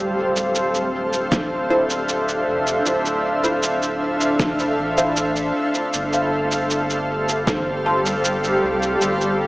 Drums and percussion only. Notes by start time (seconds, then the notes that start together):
0.36 cabasa
0.55 cabasa
0.74 cabasa
1.13 cabasa
1.32 kick, snare, cabasa
1.90 cabasa
2.09 cabasa
2.28 cabasa
2.67 cabasa
2.86 cabasa
3.05 cabasa
3.44 cabasa
3.63 cabasa
3.82 cabasa
4.21 cabasa
4.39 kick, snare, cabasa
4.59 cabasa
4.97 cabasa
5.16 cabasa
5.36 cabasa
5.74 cabasa
5.93 cabasa
6.13 cabasa
6.51 cabasa
6.70 cabasa
6.90 cabasa
7.29 cabasa
7.47 kick, snare, cabasa
8.06 cabasa
8.24 cabasa
8.44 cabasa
8.82 cabasa
9.01 cabasa
9.21 cabasa